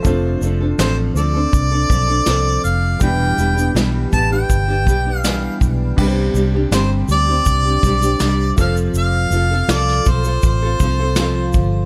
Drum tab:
CC |----------------|----------------|x---------------|----------------|
SH |x-x-x-x-x-x-x-x-|x-xxx-x-x-x-x-x-|--x-x-x-x-xxx-xx|x-x-x-xxx-x-x-x-|
SD |----o-------o---|----o-------o---|----o-------o---|----oo------o---|
BD |o-------o-o-----|o-----o-o-o---o-|o-------o-o---o-|------o-o-o---o-|